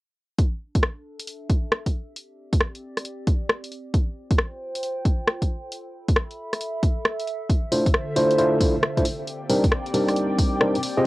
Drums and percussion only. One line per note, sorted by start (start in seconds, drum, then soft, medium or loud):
0.38 kick loud
0.38 closed hi-hat medium
0.75 kick medium
0.75 closed hi-hat medium
0.83 cross-stick loud
1.20 closed hi-hat medium
1.27 closed hi-hat medium
1.50 kick loud
1.50 closed hi-hat medium
1.72 cross-stick loud
1.86 kick medium
1.86 closed hi-hat soft
2.16 closed hi-hat medium
2.53 kick loud
2.53 closed hi-hat medium
2.61 cross-stick loud
2.75 closed hi-hat soft
2.97 cross-stick medium
2.97 closed hi-hat medium
3.05 closed hi-hat medium
3.27 kick loud
3.27 closed hi-hat medium
3.50 cross-stick loud
3.64 closed hi-hat soft
3.72 closed hi-hat soft
3.94 kick loud
3.94 closed hi-hat medium
4.31 kick loud
4.31 closed hi-hat medium
4.38 cross-stick loud
4.75 closed hi-hat medium
4.83 closed hi-hat medium
5.05 kick loud
5.05 closed hi-hat medium
5.27 cross-stick loud
5.42 kick medium
5.42 closed hi-hat soft
5.72 closed hi-hat medium
6.08 kick loud
6.08 closed hi-hat medium
6.16 cross-stick loud
6.31 closed hi-hat soft
6.53 cross-stick medium
6.53 closed hi-hat medium
6.61 closed hi-hat medium
6.83 kick loud
6.83 closed hi-hat medium
7.05 cross-stick loud
7.20 closed hi-hat soft
7.27 closed hi-hat soft
7.50 kick loud
7.50 closed hi-hat medium
7.72 open hi-hat medium
7.86 kick loud
7.86 closed hi-hat medium
7.94 cross-stick loud
8.16 open hi-hat loud
8.31 closed hi-hat medium
8.39 closed hi-hat medium
8.61 kick loud
8.61 open hi-hat medium
8.83 cross-stick loud
8.97 kick medium
8.97 closed hi-hat soft
9.05 open hi-hat medium
9.27 closed hi-hat medium
9.50 open hi-hat loud
9.64 kick loud
9.64 closed hi-hat medium
9.72 cross-stick loud
9.86 closed hi-hat soft
9.94 open hi-hat loud
10.08 cross-stick medium
10.08 closed hi-hat medium
10.16 closed hi-hat medium
10.38 kick loud
10.38 open hi-hat loud
10.61 cross-stick loud
10.75 closed hi-hat medium
10.83 open hi-hat loud